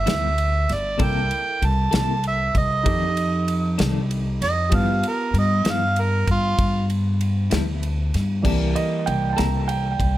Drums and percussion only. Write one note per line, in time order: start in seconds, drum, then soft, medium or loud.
0.07 snare loud
0.07 ride medium
0.38 ride medium
0.69 snare soft
0.69 ride medium
0.99 kick loud
0.99 ride medium
1.31 ride medium
1.62 ride medium
1.93 snare loud
1.93 ride medium
2.24 ride medium
2.55 kick medium
2.55 ride medium
2.86 kick loud
2.86 ride medium
3.17 ride medium
3.48 ride medium
3.79 snare loud
3.79 ride medium
4.11 ride medium
4.42 snare soft
4.42 ride medium
4.72 kick loud
4.72 ride medium
5.03 ride medium
5.34 ride medium
5.65 snare loud
5.65 ride medium
5.96 ride medium
6.27 kick medium
6.27 ride medium
6.58 kick loud
6.58 ride medium
6.90 ride medium
7.21 ride medium
7.51 snare loud
7.51 ride medium
7.83 ride medium
8.14 snare soft
8.14 ride medium
8.45 kick loud
8.45 crash loud
8.76 ride medium
9.07 ride medium
9.38 snare loud
9.38 ride medium
9.69 ride medium
10.00 kick medium
10.00 ride medium